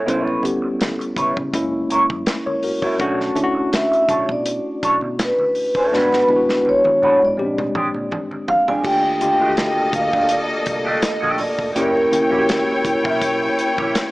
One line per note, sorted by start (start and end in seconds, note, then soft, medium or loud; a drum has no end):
0.00 1.13 A4 medium
0.06 0.36 C#2 medium
0.06 0.37 G3 medium
0.06 0.37 B3 medium
0.06 0.37 C#4 medium
0.06 0.20 D#4 medium
0.06 0.38 E4 medium
0.06 0.21 A#4 medium
0.06 0.21 C5 medium
0.06 closed hi-hat medium
0.20 0.40 E4 medium
0.20 0.41 B4 medium
0.20 0.41 C#5 medium
0.27 muted conga soft
0.42 1.52 G3 medium
0.42 1.53 B3 medium
0.42 1.53 C#4 medium
0.42 1.54 G4 medium
0.42 closed hi-hat medium
0.42 high conga medium
0.62 muted clean electric guitar stroke soft
0.80 muted clean electric guitar stroke soft
0.80 snare loud
0.80 closed hi-hat medium
0.80 muted conga soft
0.80 high conga medium
0.99 muted clean electric guitar stroke soft
0.99 closed hi-hat soft
0.99 muted conga soft
1.16 1.32 C#2 medium
1.16 1.31 E4 medium
1.16 1.31 B4 medium
1.16 1.32 C#5 medium
1.16 kick medium
1.16 closed hi-hat medium
1.16 high conga medium
1.16 low conga medium
1.36 1.50 C#3 medium
1.36 kick medium
1.36 low conga medium
1.53 1.83 F#1 medium
1.53 2.72 G#3 medium
1.53 2.72 A#3 medium
1.53 2.72 C#4 medium
1.53 2.73 E4 medium
1.53 muted clean electric guitar stroke soft
1.53 kick medium
1.53 closed hi-hat medium
1.90 2.06 F#1 medium
1.90 2.01 E4 soft
1.90 2.02 A#4 soft
1.90 2.02 C#5 medium
1.90 closed hi-hat medium
2.10 2.23 F#2 medium
2.10 muted clean electric guitar stroke soft
2.10 kick medium
2.10 high conga medium
2.26 muted clean electric guitar stroke soft
2.26 snare loud
2.26 closed hi-hat medium
2.26 muted conga soft
2.46 2.62 A#4 soft
2.46 2.62 C#5 medium
2.46 muted clean electric guitar stroke soft
2.46 high conga medium
2.63 2.82 F#4 medium
2.63 2.82 A#4 medium
2.63 open hi-hat medium
2.82 2.96 E4 medium
2.82 2.99 F#4 medium
2.82 2.95 A#4 medium
2.82 2.95 C#5 medium
2.82 kick medium
2.99 3.29 B1 medium
2.99 3.29 A3 medium
2.99 3.30 C#4 medium
2.99 3.33 D4 medium
2.99 3.30 D4 medium
2.99 3.30 F#4 loud
2.99 3.34 A4 medium
2.99 3.34 C#5 medium
2.99 kick loud
2.99 closed hi-hat medium
2.99 muted conga soft
3.20 snare soft
3.20 muted conga soft
3.35 4.54 A3 medium
3.35 4.55 C#4 medium
3.35 4.55 D4 medium
3.35 3.43 E4 medium
3.35 closed hi-hat medium
3.35 high conga medium
3.44 4.59 F#4 medium
3.55 muted clean electric guitar stroke soft
3.72 4.26 E5 loud
3.72 muted clean electric guitar stroke soft
3.72 snare loud
3.72 closed hi-hat medium
3.72 high conga medium
3.92 muted clean electric guitar stroke soft
3.92 closed hi-hat soft
3.92 muted conga soft
4.09 4.25 B1 medium
4.09 4.23 D4 medium
4.09 4.24 A4 medium
4.09 4.24 C#5 medium
4.09 kick medium
4.09 closed hi-hat medium
4.09 high conga medium
4.09 low conga medium
4.29 4.58 B2 medium
4.29 5.23 D5 medium
4.29 muted clean electric guitar stroke soft
4.29 kick medium
4.29 low conga medium
4.46 muted clean electric guitar stroke soft
4.46 closed hi-hat medium
4.46 muted conga soft
4.83 4.98 B1 medium
4.83 4.94 D4 medium
4.83 4.94 A4 medium
4.83 4.95 C#5 medium
4.83 kick medium
4.83 closed hi-hat medium
5.01 5.31 B2 medium
5.01 muted clean electric guitar stroke soft
5.01 high conga soft
5.19 5.94 B4 medium
5.19 muted clean electric guitar stroke soft
5.19 snare loud
5.19 closed hi-hat medium
5.38 muted clean electric guitar stroke soft
5.38 muted conga soft
5.38 high conga medium
5.55 open hi-hat medium
5.75 5.91 D4 soft
5.75 5.93 A4 medium
5.75 5.94 C#5 medium
5.75 kick medium
5.92 6.22 G#1 medium
5.92 6.22 G#3 medium
5.92 6.22 B3 medium
5.92 6.26 D4 medium
5.92 6.22 D4 medium
5.92 6.23 F#4 medium
5.92 6.26 F#4 medium
5.92 6.27 B4 medium
5.92 6.69 B4 medium
5.92 snare medium
6.12 snare soft
6.12 muted conga soft
6.27 7.36 G#3 medium
6.27 7.38 B3 medium
6.27 7.38 D4 medium
6.27 6.36 E4 medium
6.27 high conga medium
6.36 7.42 F#4 medium
6.49 muted clean electric guitar stroke soft
6.49 snare soft
6.65 muted clean electric guitar stroke soft
6.65 high conga medium
6.69 7.19 C#5 medium
6.84 muted clean electric guitar stroke soft
6.84 high tom medium
6.84 muted conga soft
7.02 7.17 G#1 medium
7.02 7.16 D4 medium
7.02 7.17 F#4 medium
7.02 7.17 B4 medium
7.02 high conga medium
7.02 low conga medium
7.22 7.35 G#2 medium
7.22 8.09 D5 medium
7.22 muted clean electric guitar stroke soft
7.22 low conga medium
7.37 7.67 A#1 medium
7.37 8.56 G#3 medium
7.37 8.57 C4 medium
7.37 7.45 C#4 soft
7.37 8.57 G4 medium
7.37 muted clean electric guitar stroke soft
7.37 muted conga soft
7.45 8.60 D4 medium
7.58 mid tom medium
7.58 muted conga soft
7.75 7.90 A#1 medium
7.75 7.87 G#3 medium
7.75 7.87 D4 soft
7.75 7.87 G4 medium
7.75 mid tom medium
7.94 8.08 A#2 medium
7.94 muted clean electric guitar stroke soft
7.94 high conga medium
8.11 muted clean electric guitar stroke soft
8.11 mid tom medium
8.11 muted conga soft
8.31 muted clean electric guitar stroke soft
8.31 high conga medium
8.48 8.68 F5 medium
8.48 floor tom medium
8.68 8.81 G#3 medium
8.68 8.80 D4 medium
8.68 8.80 G4 medium
8.68 8.85 G#5 medium
8.68 floor tom medium
8.83 9.90 D#2 medium
8.83 9.14 A3 medium
8.83 8.99 A3 medium
8.83 11.72 A#3 medium
8.83 9.14 D4 medium
8.83 8.99 D4 medium
8.83 9.14 F4 medium
8.83 9.14 G4 medium
8.83 9.00 G4 medium
8.83 11.72 A4 medium
8.83 11.72 D#5 medium
8.83 9.90 G5 medium
8.83 kick loud
8.83 crash medium
8.83 muted conga soft
9.06 muted conga soft
9.21 9.37 A3 medium
9.21 9.37 D4 medium
9.21 9.37 F4 medium
9.21 9.38 G4 medium
9.21 muted clean electric guitar stroke soft
9.21 closed hi-hat medium
9.21 high conga medium
9.40 10.58 D3 medium
9.40 10.58 A3 medium
9.40 9.51 A3 soft
9.40 9.51 D4 soft
9.40 10.58 F4 medium
9.40 9.47 F#4 medium
9.40 9.50 G4 medium
9.48 10.62 G4 medium
9.57 muted clean electric guitar stroke soft
9.57 snare loud
9.57 closed hi-hat medium
9.57 high conga medium
9.77 muted clean electric guitar stroke soft
9.77 muted conga soft
9.93 10.52 D2 medium
9.93 10.32 F5 medium
9.93 kick medium
9.93 closed hi-hat medium
9.93 high conga medium
9.93 low conga medium
10.13 10.26 A3 medium
10.13 10.26 D4 medium
10.13 10.25 G4 medium
10.13 kick medium
10.13 low conga medium
10.29 10.89 D5 medium
10.29 muted clean electric guitar stroke soft
10.29 closed hi-hat medium
10.48 muted clean electric guitar stroke soft
10.48 muted conga soft
10.66 10.96 C2 medium
10.66 kick medium
10.66 closed hi-hat medium
10.85 10.99 A3 medium
10.85 10.99 D4 medium
10.85 10.98 G4 medium
10.85 11.03 D#5 medium
10.85 high conga medium
11.02 11.41 D#5 medium
11.02 muted clean electric guitar stroke soft
11.02 muted fingered electric bass stroke soft
11.02 snare loud
11.02 closed hi-hat medium
11.02 muted conga soft
11.21 11.36 A#1 medium
11.21 11.37 A3 medium
11.21 11.37 D4 medium
11.21 11.38 G4 medium
11.21 muted conga soft
11.21 high conga medium
11.38 11.77 D5 medium
11.38 muted clean electric guitar stroke soft
11.38 open hi-hat medium
11.38 low conga medium
11.57 11.73 F1 medium
11.57 muted clean electric guitar stroke soft
11.57 kick medium
11.74 12.05 F#1 medium
11.74 11.90 A#3 medium
11.74 12.06 A#3 medium
11.74 12.06 C#4 medium
11.74 11.90 E4 medium
11.74 14.11 E4 medium
11.74 12.06 E4 medium
11.74 11.90 G4 medium
11.74 12.07 G4 medium
11.74 13.91 A#4 medium
11.74 14.11 C#5 medium
11.74 14.11 G5 medium
11.74 closed hi-hat medium
11.94 muted clean electric guitar stroke soft
11.94 muted conga soft
12.11 12.28 A#3 medium
12.11 12.28 C#4 medium
12.11 12.28 E4 medium
12.11 12.29 A#4 medium
12.11 muted clean electric guitar stroke soft
12.11 muted fingered electric bass stroke soft
12.11 closed hi-hat medium
12.11 high conga medium
12.31 12.45 A#1 medium
12.31 13.49 A#3 medium
12.31 12.42 A#3 soft
12.31 13.49 C#4 medium
12.31 13.49 E4 medium
12.31 12.42 E4 soft
12.31 12.38 F#4 medium
12.31 12.41 G4 medium
12.39 13.53 G4 medium
12.49 snare loud
12.49 closed hi-hat medium
12.49 muted conga soft
12.49 high conga medium
12.68 muted clean electric guitar stroke soft
12.68 muted conga soft
12.85 muted fingered electric bass stroke soft
12.85 kick medium
12.85 closed hi-hat medium
12.85 high conga medium
12.85 low conga medium
13.04 13.48 B1 medium
13.04 13.18 A#3 medium
13.04 13.18 E4 medium
13.04 13.17 G4 medium
13.04 kick medium
13.04 low conga medium
13.21 muted clean electric guitar stroke soft
13.21 kick medium
13.21 closed hi-hat medium
13.42 muted clean electric guitar stroke soft
13.58 muted fingered electric bass stroke soft
13.58 closed hi-hat medium
13.77 13.92 A#1 medium
13.77 13.91 A#3 medium
13.77 13.91 E4 medium
13.77 13.91 G4 medium
13.77 kick medium
13.77 high conga medium
13.95 muted clean electric guitar stroke soft
13.95 snare loud
13.95 closed hi-hat medium